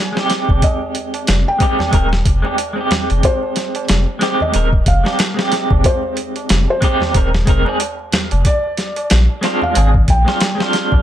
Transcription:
Already playing: G#5
0.12 G#3 C4, tabla na
0.17 D#4 G4, snare
0.30 snare, closed hi-hat
0.49 F1, kick, tabla na, tabla ge
0.62 D#5, kick, closed hi-hat, tabla na
0.82 tabla na
0.95 closed hi-hat
1.14 closed hi-hat, tabla na
1.27 F1, snare, closed hi-hat, tabla na
1.47 G5, tabla na
1.58 G#3 C4 D#4 G4, kick, closed hi-hat
1.79 snare, tabla na, tabla ge
1.91 D#1 G#3 C4 D#4 A#4, kick, closed hi-hat, tabla na
2.12 snare, tabla na, tabla ge
2.25 F1, kick, closed hi-hat
2.42 G#3 C4 D#4 G4, tabla na
2.58 closed hi-hat, tabla na
2.73 G#3 C4
2.78 D#4 G4, tabla na
2.91 snare, closed hi-hat, tabla ge
3.10 F1, closed hi-hat, tabla na
3.23 C5, kick, closed hi-hat, tabla na
3.43 tabla na
3.56 snare, closed hi-hat
3.75 closed hi-hat, tabla na
3.88 F1, snare, closed hi-hat, tabla na
4.07 tabla na
4.19 G#3 C4 D#4 G4, snare, closed hi-hat
4.40 D#5, tabla na, tabla ge
4.52 D#1 G#3 C4 D#4 A#4, closed hi-hat, tabla na
4.73 kick, tabla na
4.86 F1 F5, kick, closed hi-hat
5.04 G#3 C4 D#4 G4, snare, tabla na
5.19 snare, closed hi-hat, tabla na
5.34 G#3 C4, tabla na
5.39 D#4 G4, snare
5.52 snare, closed hi-hat
5.70 F1, kick, tabla na, tabla ge
5.84 C5, kick, closed hi-hat, tabla na
6.03 tabla na
6.17 closed hi-hat
6.36 closed hi-hat, tabla na
6.49 F1, snare, closed hi-hat
6.68 C5, tabla na
6.81 G#3 C4 D#4 G4, kick, closed hi-hat
7.00 snare, tabla na, tabla ge
7.13 D#1 G#3 C4 D#4 A#4, kick, closed hi-hat, tabla na
7.33 snare, tabla na, tabla ge
7.45 F1 G#3 C4 D#4 A#4, kick, closed hi-hat
7.65 G#3 C4 D#4, tabla na
7.69 G#4
7.80 closed hi-hat, tabla na
7.99 tabla na
8.12 snare, closed hi-hat, tabla ge
8.31 F1, closed hi-hat, tabla na
8.45 D5, kick, closed hi-hat, tabla na
8.64 tabla na
8.77 snare, closed hi-hat
8.96 closed hi-hat, tabla na
9.10 A#1, snare, closed hi-hat, tabla na
9.30 tabla na
9.41 G#3 C4 D4 F4, snare, closed hi-hat
9.62 F5, tabla na, tabla ge
9.74 G#1 G#3 C4 D4 G#4, closed hi-hat, tabla na
9.94 kick, tabla na
10.08 A#1 G5, kick, closed hi-hat
10.25 G#3 C4 D4 F4, snare, tabla na
10.40 snare, closed hi-hat, tabla na
10.55 G#3 C4
10.59 D4 F4, snare, tabla na
10.73 snare, closed hi-hat
10.92 A#1, kick, tabla na, tabla ge

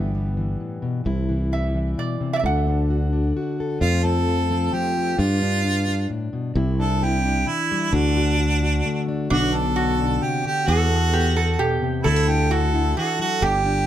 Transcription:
Already playing: G1 G2 E3 G3 B3 G4
0.15 G3
0.37 E3
0.60 A2
0.82 B2
1.05 C2 C3 E4
1.29 E3
1.52 G3 E5
1.75 E3
1.98 B2 D5
2.21 C3
2.33 D5 E5
2.39 E5
2.44 D2 D3 A4 F#5
2.67 D4
2.90 F#4
3.13 D4
3.37 F#4
3.60 A4
3.81 F2 F3 A3 C4 F4
4.03 C4 A4
4.28 F4
4.51 C4
4.73 F3 G4
4.97 A3
5.18 G2 D4 F4
5.42 D4
5.65 D4
5.89 D4
6.10 A2
6.33 B2
6.55 C2 C3 E4
6.80 D4 A4
7.03 E4 G4
7.25 D4
7.47 E3 E4
7.72 G3
7.93 D2 D3 D4 F#4
8.17 F#4
8.40 F#4
8.63 F#4
8.86 A3
9.08 D4
9.30 B1 B2 D3 B3 D4 F#4
9.54 D4 A4
9.76 F#4
10.00 D4
10.22 C3 G4
10.44 D3 G4
10.67 E2 B3 F#4 A4
10.91 B3
11.13 B3 G4
11.36 B3 A4
11.59 B2 G4
11.82 C3
12.04 D2 D3 B3 E4 A4
12.16 D4
12.28 E4 G4
12.51 E4 F#4 A4
12.74 E4
12.97 E3 F#4 A4
13.19 F#3 F#4
13.42 G1 G2 D4 G4
13.66 D4

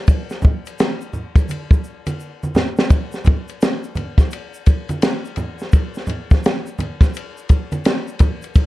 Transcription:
0.07 kick, ride, shaker
0.30 snare, shaker
0.42 kick, low conga, shaker
0.66 ride, shaker
0.79 snare, hi-hat pedal, ride, shaker
1.01 shaker
1.13 low conga, shaker
1.36 kick, ride, shaker
1.49 ride, high conga, shaker
1.71 kick, shaker
1.84 shaker
2.07 ride, high conga, shaker
2.20 shaker
2.43 high conga, shaker
2.55 snare, low conga, shaker
2.77 snare, shaker
2.90 kick, ride, shaker
3.12 snare, shaker
3.25 kick, ride, low conga, shaker
3.48 ride, shaker
3.61 snare, hi-hat pedal, ride, shaker
3.83 shaker
3.95 ride, high conga, low conga, shaker
4.18 kick, snare, ride, shaker
4.31 ride, shaker
4.54 shaker
4.66 kick, ride, shaker
4.89 ride, high conga, shaker
5.02 snare, hi-hat pedal, ride, shaker
5.25 shaker
5.36 ride, low conga, shaker
5.59 snare, shaker
5.72 kick, ride, shaker
5.94 snare, shaker
6.07 ride, low conga, shaker
6.31 kick, snare, shaker
6.44 snare, hi-hat pedal, ride, shaker
6.66 shaker
6.79 ride, high conga, low conga, shaker
7.01 kick, snare, ride, shaker
7.14 ride, shaker
7.37 shaker
7.49 kick, ride, shaker
7.72 ride, high conga, shaker
7.85 snare, hi-hat pedal, ride, shaker
8.08 shaker
8.19 kick, ride, low conga, shaker
8.42 ride, shaker
8.55 kick, ride, shaker

